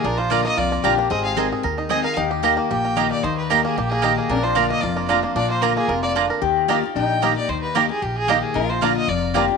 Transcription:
<<
  \new Staff \with { instrumentName = "Fiddle" } { \time 4/4 \key ees \major \tempo 4 = 226 bes'8 c''8 d''8 ees''8 d''4 r4 | ees''8 f''8 r2 ees''8 f''8 | r2 g''4. d''8 | c''8 ces''8 bes'8 aes'8 g'8 aes'8 g'8 aes'8 |
bes'8 c''8 d''8 ees''8 d''4 r4 | d''8 c''8 bes'8 aes'8 bes'8 d''8 r4 | r2 g''4. d''8 | c''8 ces''8 bes'8 aes'8 g'8 aes'8 g'8 aes'8 |
bes'8 c''8 d''8 ees''8 d''4 r4 | }
  \new Staff \with { instrumentName = "Mandolin" } { \time 4/4 \key ees \major r4 <bes f' d'' bes''>8 r4. <bes f' d'' bes''>8 r8 | r4 <c' aes' ees'' aes''>8 r4. <c' aes' ees'' aes''>8 r8 | r4 <bes g' ees'' bes''>8 r4. <bes g' ees'' bes''>8 r8 | r4 <bes g' ees'' bes''>8 r4. <bes g' ees'' bes''>8 r8 |
r4 <bes f' d'' bes''>8 r4. <bes f' d'' bes''>8 r8 | r4 <bes f' d'' bes''>8 r4. <bes f' d'' bes''>8 r8 | r4 <bes g' ees'' bes''>8 r4. <bes g' ees'' bes''>8 r8 | r4 <bes g' ees'' bes''>8 r4. <bes g' ees'' bes''>8 r8 |
r4 <bes f' d'' bes''>8 r4. <bes f' d'' bes''>8 r8 | }
  \new Staff \with { instrumentName = "Resonator guitar played with a steel bar" } { \time 4/4 \key ees \major f'2. g'4 | aes'2.~ aes'8 r8 | g'1~ | g'1 |
d'2. f'4 | f'2.~ f'8 r8 | g'4 f'4 ees'2~ | ees'1 |
f'2. g'4 | }
  \new Staff \with { instrumentName = "Five-string banjo" } { \time 4/4 \key ees \major d'8 f'8 bes'8 bes8 f'8 bes8 d'8 bes8 | c'8 aes'8 bes'8 aes'8 bes'8 ees'8 aes'8 bes'8 | ees'8 g'8 bes'8 bes8 g'8 bes8 ees'8 bes8 | ees'4 bes'8 bes8 g'8 bes8 ees'8 bes8 |
d'8 f'8 bes'8 bes8 f'8 bes8 d'8 bes8 | d'8 bes8 bes'8 bes8 f'8 bes8 d'8 bes'8 | r4 <bes ees' g'>8 r4. <bes ees' g'>8 r8 | r4 <bes ees' g'>8 r4. <bes ees' g'>8 r8 |
r4 <bes d' f'>8 r4. <bes d' f'>8 r8 | }
  \new Staff \with { instrumentName = "Steel-string acoustic guitar" } { \time 4/4 \key ees \major << { r4 <d bes d' f'>8 <d' f'>8 r4 <d bes d' f'>8 <d' f'>8 | r4 <aes c' ees' aes'>4 r4 <aes c' ees' aes'>8 <ees' aes'>8 | r4 <ees bes ees' g'>4 r4 <ees bes ees' g'>4 | r4 <ees bes ees' g'>4 r4 <ees bes ees' g'>4 |
r4 <d bes d' f'>4 r4 <d bes d' f'>8 <d' f'>8 | r4 <d bes d' f'>4 r2 | r4 <ees bes ees' g'>8 <ees' g'>8 r4 <ees bes ees' g'>8 <ees' g'>8 | r4 <ees bes ees' g'>8 <ees' g'>8 r4 <ees bes ees' g'>4 |
r4 <d bes d' f'>4 r4 <d bes d' f'>8 <d' f'>8 | } \\ { bes,2 f,2 | aes,2 ees2 | ees2 bes,2 | ees2 bes,2 |
bes,2 f,2 | bes,2 c4 d4 | ees2 bes,2 | ees2 bes,2 |
bes,2 f,2 | } >> }
  \new Staff \with { instrumentName = "Upright bass" } { \clef bass \time 4/4 \key ees \major bes,,2 c,4 bes,,4 | aes,,2 ees,2 | ees,2 bes,,2 | ees,2 bes,,2 |
bes,,2 f,,2 | bes,,2 f,,2 | ees,2 bes,,2 | ees,2 bes,,2 |
bes,,2 f,,2 | }
>>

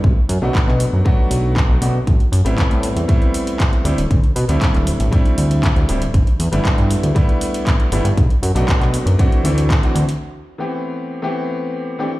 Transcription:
<<
  \new Staff \with { instrumentName = "Grand piano" } { \time 4/4 \key a \dorian \tempo 4 = 118 r8. <fis a b d' fis'>4~ <fis a b d' fis'>16 <fis a b d' fis'>4. <fis a b d' fis'>16 r16 | r8. <g a b c' e'>4~ <g a b c' e'>16 <g a b c' e'>4. <g a c' d' e'>16 r16 | r8. <g a c' d' e'>4~ <g a c' d' e'>16 <g a c' d' e'>4. <g a c' d' e'>16 r16 | r8. <g a b d' e'>4~ <g a b d' e'>16 <g a b d' e'>4. <g a b d' e'>16 r16 |
r8. <fis a b d' fis'>4~ <fis a b d' fis'>16 <e a c' d' fis'>8 <e a c' d' e'>8. <e a c' d' fis'>8 r16 | r8. <e a b c' g'>4~ <e a b c' g'>16 <e a b c' g'>4. <e a c' d' g'>16 r16 | }
  \new Staff \with { instrumentName = "Analog synth bass" } { \clef bass \time 4/4 \key a \dorian b,,16 r16 fis,16 b,,16 r16 b,16 r16 fis,16 r8 b,,8. b,,16 b,16 r16 | a,,16 r16 fis,16 a,,16 r16 a,16 r16 e,16 r4. d,16 d,,16 | d,16 r16 b,16 d,16 r16 d,,16 r16 a,,16 r8 d,8. d,16 d,,16 r16 | g,,16 r16 e,16 g,,16 r16 g,16 r16 d,16 r4. g,,16 g,16 |
b,,16 r16 fis,16 b,,16 r16 b,16 r16 fis,16 r8 d,8. r16 d,16 r16 | r1 | }
  \new DrumStaff \with { instrumentName = "Drums" } \drummode { \time 4/4 bd8 hho8 <hc bd>16 hc16 hho8 bd8 hho8 <hc bd>8 hho8 | <hh bd>16 hh16 hho16 hh16 <hc hh bd>16 hh16 hho16 hh16 <hh bd>16 hh16 hho16 hh16 <hc hh bd>16 hh16 hho16 hh16 | <hh bd>16 hh16 hho16 hh16 <hc hh bd>16 <hc hh>16 hho16 hh16 <hh bd>16 hh16 hho16 hh16 <hc hh bd>16 hh16 hho16 hh16 | <hh bd>16 hh16 hho16 hh16 <hc hh bd>16 hh16 hho16 hh16 <hh bd>16 hh16 hho16 hh16 <hc hh bd>16 hh16 hho16 hh16 |
<hh bd>16 hh16 hho16 hh16 <hc hh bd>16 <hc hh>16 hho16 hh16 <hh bd>16 hh16 hho16 hh16 <hc hh bd>16 hh16 hho16 hh16 | r4 r4 r4 r4 | }
>>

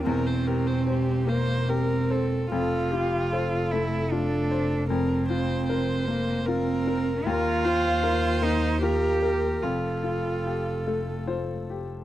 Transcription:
<<
  \new Staff \with { instrumentName = "Viola" } { \time 3/4 \key f \major \tempo 4 = 75 bes'16 c''16 bes'16 c''16 g'8 c''8 bes'8 a'8 | a'8 g'8 a'4 a'4 | bes'8 c''8 c''4 bes'4 | bes'8 c''4. bes'8 bes'8 |
a'2~ a'8. r16 | }
  \new Staff \with { instrumentName = "Upright piano" } { \time 3/4 \key f \major << { r2. | r2. | r2. | r2. |
r4. a'8 c''4 | } \\ { e,8 g'8 c''8 bes8 g'8 c''8 | f,8 f'8 c''8 a8 f'8 c''8 | f,8 f'8 bes'8 bes8 f'8 bes'8 | ees,8 f'8 bes'8 bes8 f'8 bes'8 |
f,8 f'8 g'8 a8 f'8 g'8 | } >> }
  \new Staff \with { instrumentName = "Cello" } { \time 3/4 \key f \major c'4. bes8 c'4 | f'4. e'8 d'4 | c'4. bes8 c'4 | f'4. ees'8 g'4 |
f'2 r4 | }
  \new Staff \with { instrumentName = "Double bass" } { \clef bass \time 3/4 \key f \major e,,2. | f,,2.~ | f,,2. | ees,2. |
f,,2. | }
>>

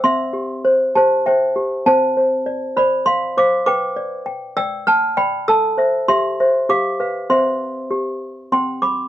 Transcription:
\new Staff \with { instrumentName = "Toy piano" } { \time 3/4 \key c \major \tempo 4 = 99 << { <e'' c'''>4. <c'' a''>8 <c'' g''>4 | <c'' a''>4. <d'' b''>8 <f'' c'''>8 <f'' d'''>8 | <g'' d'''>4. <g'' e'''>8 <a'' f'''>8 <g'' b''>8 | <a'' e'''>4 <e'' c'''>4 <f'' d'''>4 |
<e'' c'''>2 <g'' c'''>8 <b'' d'''>8 | } \\ { c'8 g'8 c''8 g'8 e''8 g'8 | c'8 c''8 d''8 c''8 r8 c''8 | b'8 d''8 g''8 d''8 g''8 d''8 | a'8 <c'' e''>8 g'8 <c'' e''>8 g'8 <b' f''>8 |
<c' c''>4 g'4 c'4 | } >> }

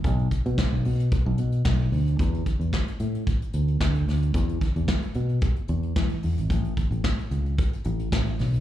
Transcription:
<<
  \new Staff \with { instrumentName = "Fingered electric bass" } { \clef bass \time 4/4 \key e \mixolydian \tempo 4 = 111 b,,8 r16 b,16 r16 b,,16 b,8 r16 b,,16 b,8 b,,8 d,8 | e,8 r16 e,16 r8 a,8 r8 d,8 d,8 d,8 | e,8 r16 e,16 r8 b,8 r8 e,8 e16 r16 e,16 gis,,16 | a,,8 r16 a,,16 r8 cis,8 r8 a,,8 a,,8 b,,8 | }
  \new DrumStaff \with { instrumentName = "Drums" } \drummode { \time 4/4 <hh bd>16 hh16 <hh bd>16 hh16 <bd sn>8 hho16 hh16 <hh bd>8 hh16 hh16 <bd sn>16 hh16 hho16 hh16 | <hh bd>16 hh16 <hh bd>16 hh16 <bd sn>16 hh16 hh16 hh16 <hh bd>16 hh16 hh16 hh16 <bd sn>16 hh16 <hho sn>16 hh16 | <hh bd>16 hh16 <hh bd>16 hh16 <bd sn>16 hh16 hh16 hh16 <hh bd>16 hh16 hh16 hh16 <bd sn>16 hh16 hho16 hh16 | <hh bd>16 hh16 <hh bd>16 hh16 <bd sn>16 hh16 hh16 hh16 <hh bd>16 hh16 hh16 hh16 <bd sn>16 hh16 <hho sn>16 hh16 | }
>>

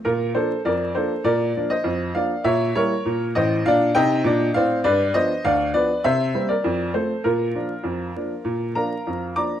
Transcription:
<<
  \new Staff \with { instrumentName = "Upright piano" } { \time 2/4 \key bes \major \tempo 4 = 100 <f' bes'>8 <a' c''>8 <bes' d''>8 <a' c''>8 | <bes' d''>8. <c'' ees''>8. <d'' f''>8 | <des'' fes''>8 <bes' des''>4 <c'' ees''>8 | <d'' f''>8 <ees'' g''>4 <d'' f''>8 |
<b' d''>8 <c'' ees''>8 <d'' f''>8 <b' d''>8 | <c'' e''>8. <bes' d''>8. <a' c''>8 | <f' bes'>2~ | <f' bes'>8 <bes' f'' bes''>4 <d'' bes'' d'''>8 | }
  \new Staff \with { instrumentName = "Upright piano" } { \clef bass \time 2/4 \key bes \major bes,8 <f bes d'>8 f,8 <f bes d'>8 | bes,8 <f bes d'>8 f,8 <f bes d'>8 | bes,8 <g bes fes'>8 bes,8 <a,, a,>8 | <bes, d'>8 <c ees'>8 <bes, d'>8 <a, c'>8 |
g,8 <f b d'>8 d,8 <f b d'>8 | c8 <g bes c'>8 f,8 <f a c'>8 | bes,8 <f bes d'>8 f,8 <f bes d'>8 | bes,8 <f bes d'>8 f,8 <f bes d'>8 | }
>>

